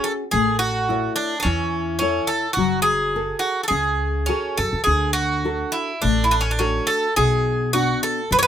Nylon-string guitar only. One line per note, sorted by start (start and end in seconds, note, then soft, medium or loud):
0.00 0.23 C#4 soft
0.00 0.23 F#4 soft
0.00 0.23 G#4 soft
0.32 0.87 A3 medium
0.89 1.34 E4 soft
0.89 1.34 A4 soft
0.89 1.34 C#5 soft
1.45 1.99 E3 medium
2.01 2.46 E4 soft
2.01 2.46 A4 soft
2.01 2.47 C#5 soft
2.58 3.13 F#3 medium
3.16 3.60 F#4 soft
3.16 3.60 G#4 soft
3.16 3.61 A4 soft
3.70 4.27 C#3 medium
4.29 4.75 F#4 soft
4.29 4.75 G#4 soft
4.29 4.75 A4 soft
4.87 5.43 D3 medium
5.44 5.91 D4 soft
5.44 5.91 F#4 soft
5.44 5.91 A4 soft
6.02 6.59 A3 medium
6.59 7.06 D4 soft
6.59 7.06 F#4 soft
6.59 7.06 A4 soft
7.17 7.73 B2 medium
7.74 8.20 B3 soft
7.74 8.20 D4 soft
7.74 8.20 F#4 soft
8.31 8.47 F#3 medium